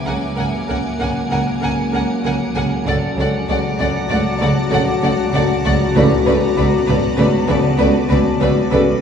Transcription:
Already playing: synth drone C#2, french horn section F#3 A#3, ambient pad A#4 F#5 G#5, violin section G#5 D6
0.06 double bass section C#2, cello section C#3 C#4, viola section A#4, violin section F#5 G#5
0.36 double bass section C#2, cello section C#3, viola section A#4, violin section F#5 G#5
0.68 double bass section C#2, cello section C#3 C#4, viola section A#4, violin section F#5 G#5
0.99 double bass section C#2, cello section C#3 C#4, viola section A#4, violin section F#5 G#5
1.31 double bass section C#2, cello section C#3, viola section A#4, violin section F#5 G#5
1.61 double bass section C#2, cello section C#3 C#4, viola section A#4, violin section F#5 G#5
1.93 double bass section C#2, cello section C#3 C#4, viola section A#4, violin section F#5 G#5
2.24 double bass section C#2, cello section C#3 C#4, viola section A#4, violin section F#5 G#5
2.55 double bass section C#2, cello section C#3, viola section A#4, violin section F#5 G#5
2.85 double bass section C#2, synth drone C#2, cello section C#3, ambient pad F#4 F#5 D6, french horn section F#4, viola section A4, violin section D5 F#5 A5
3.17 double bass section C#2, cello section C#3 C#4, viola section A4, violin section D5 F#5
3.49 double bass section C#2, cello section C#3, viola section A3, violin section D5 F#5 A#5
3.79 double bass section C#2, cello section C#3 C#4, viola section A3, violin section D5 F#5
4.09 double bass section C#2, cello section C#3 C#4, viola section A3, violin section D5 F#5
4.40 double bass section C#2, cello section C#3, viola section A3, violin section D5 F#5
4.70 double bass section C#2, cello section C#3 C#4, viola section A3, violin section D5 F#5
5.02 double bass section C#2, cello section C#3 C#4, viola section A3, violin section D5 F#5
5.33 double bass section C#2, cello section C#3 C#4, viola section A3, violin section D5 F#5
5.64 double bass section C#2, cello section C#3, viola section A3, violin section D5 F#5
5.95 double bass section C#2, cello section C#3, timpani C#3, viola section A3, french horn section B3, violin section B4 D5, ambient pad B4 D6
6.26 double bass section C#2, cello section C#3 C#4, viola section A3, violin section B4 D5
6.57 double bass section C#2, cello section C#3, viola section A3, violin section B4 D5
6.87 double bass section C#2, cello section C#3 C#4, viola section A3, violin section B4 D5
7.17 double bass section C#2, cello section C#3 C#4, viola section A3, violin section B4 D5
7.38 violin section A5
7.48 double bass section C#2, cello section C#3, viola section A3, violin section B4 D5
7.79 double bass section C#2, cello section C#3 C#4, viola section A3, violin section B4 D5
8.10 double bass section C#2, cello section C#3 C#4, viola section A3, violin section B4 D5
8.41 double bass section C#2, cello section C#3 C#4, viola section A3, violin section B4 D5
8.71 double bass section C#2, cello section C#3, viola section A4, violin section B4 D5

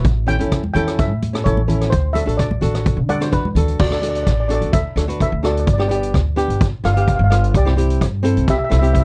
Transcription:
Already playing: steel pan E5
0.04 upright bass A1, kick, closed hi-hat
0.27 nylon-string guitar C#4 E4 A4, steel pan G5, closed hi-hat, low conga
0.39 upright bass E2, nylon-string guitar C#4 E4 A4, closed hi-hat
0.52 kick, cross-stick, closed hi-hat
0.64 high conga
0.74 upright bass E2, nylon-string guitar C#4 E4 A4, steel pan G5, closed hi-hat, low conga
0.88 cross-stick, closed hi-hat
0.99 steel pan E5, kick, closed hi-hat
1.11 upright bass A2
1.22 closed hi-hat, high conga
1.33 nylon-string guitar C#4 E4 A4, cross-stick, closed hi-hat
1.44 upright bass A1, nylon-string guitar C#4 E4 A4, steel pan C#5, kick, closed hi-hat
1.57 high conga
1.68 nylon-string guitar C#4 E4 A4, steel pan A4, closed hi-hat, low conga
1.81 cross-stick, closed hi-hat
1.90 upright bass D2, steel pan C5, kick, closed hi-hat
2.13 nylon-string guitar D4 F#4 A4, steel pan E5, closed hi-hat, high conga
2.26 upright bass A1, nylon-string guitar D4 F#4 A4, closed hi-hat
2.37 steel pan D5, kick, cross-stick, closed hi-hat
2.51 high conga
2.61 upright bass A1, nylon-string guitar D4 F#4 A4, closed hi-hat, low conga
2.75 cross-stick, closed hi-hat
2.86 kick, closed hi-hat
2.97 upright bass D3
3.09 steel pan A4 D5 F#5, closed hi-hat, high conga
3.20 nylon-string guitar D4 F#4 C5, cross-stick, closed hi-hat
3.31 upright bass E2, nylon-string guitar D4 F#4 B4, steel pan B4, kick, closed hi-hat
3.45 high conga
3.55 upright bass D2, nylon-string guitar D4 F#4 A4, closed hi-hat, low conga
3.68 closed hi-hat
3.79 upright bass D2, steel pan F#4 D5, kick, crash
3.87 nylon-string guitar D4, steel pan D5
3.91 nylon-string guitar F#4 A4, steel pan D5, cross-stick
4.02 nylon-string guitar D4 F#4 A4, steel pan D5, closed hi-hat
4.09 steel pan D5
4.15 steel pan D5, closed hi-hat
4.23 upright bass A1, steel pan D5, kick, cross-stick, closed hi-hat
4.33 steel pan D5
4.40 steel pan D5
4.48 nylon-string guitar D4 F#4 A4, steel pan D5, closed hi-hat
4.54 steel pan D5
4.61 upright bass D2, closed hi-hat
4.73 steel pan A4 E5, kick, closed hi-hat
4.96 upright bass D2, nylon-string guitar D4 F#4 A4, cross-stick, closed hi-hat
5.08 nylon-string guitar D4 F#4 B4, closed hi-hat
5.20 steel pan A4 E5, kick, closed hi-hat
5.32 upright bass D2
5.43 nylon-string guitar D4 F#4 A4, steel pan F#4 D5, cross-stick, closed hi-hat
5.52 steel pan D5
5.57 steel pan D5, closed hi-hat
5.66 upright bass G1, steel pan D5, kick, closed hi-hat
5.73 steel pan D5
5.78 nylon-string guitar B3 D4 G4, steel pan D5, cross-stick
5.88 nylon-string guitar B3 D4 G4, steel pan D5, closed hi-hat
5.95 steel pan D5
6.03 closed hi-hat
6.14 upright bass D2, kick, cross-stick, closed hi-hat
6.36 nylon-string guitar B3 D4 G4, closed hi-hat
6.48 upright bass G1, closed hi-hat
6.61 kick, closed hi-hat
6.84 upright bass G1, nylon-string guitar B3 D4 F4, steel pan A4 F5, cross-stick, closed hi-hat
6.94 nylon-string guitar B3 D4 G4, steel pan F5, closed hi-hat
7.00 steel pan F5
7.08 steel pan F5, kick, closed hi-hat
7.15 upright bass G1, steel pan F5
7.24 steel pan F5
7.30 nylon-string guitar B3 D4 F4, steel pan F5, cross-stick, closed hi-hat
7.44 closed hi-hat
7.54 upright bass C2, steel pan G4 D5, kick, closed hi-hat
7.65 nylon-string guitar C4 E4 G4, cross-stick
7.76 nylon-string guitar C4 E4 G4, closed hi-hat
7.90 closed hi-hat
8.01 upright bass G2, kick, cross-stick, closed hi-hat
8.23 nylon-string guitar C4 E4 A4, closed hi-hat
8.37 upright bass C2, closed hi-hat
8.48 steel pan G4 E5, kick, closed hi-hat
8.58 steel pan E5
8.64 steel pan E5
8.69 upright bass C2, nylon-string guitar C4 E4 A4, steel pan E5, cross-stick, closed hi-hat
8.79 nylon-string guitar C4 E4 G4, steel pan E5
8.84 steel pan E5, closed hi-hat
8.93 steel pan E5, kick, closed hi-hat
9.00 steel pan E5

